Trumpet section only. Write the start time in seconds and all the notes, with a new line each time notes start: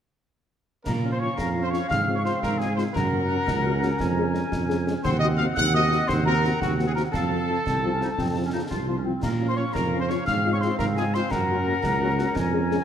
0.85 A#4
1.12 C5
1.20 C#5
1.37 A#4
1.63 C5
1.71 C#5
1.89 F5
2.16 C#5
2.25 C5
2.42 A#4
2.59 G#4
2.76 C5
2.93 A#4
5.04 C5
5.20 D#5
5.38 F5
5.57 F#5
5.76 D#5
6.09 C5
6.27 A#4
6.63 F#4
6.87 G#4
6.96 A#4
7.13 A4
9.22 A#4
9.50 C5
9.57 C#5
9.74 A#4
10.01 C5
10.10 C#5
10.27 F5
10.54 C#5
10.62 C5
10.79 A#4
10.98 G#4
11.15 C5
11.31 A#4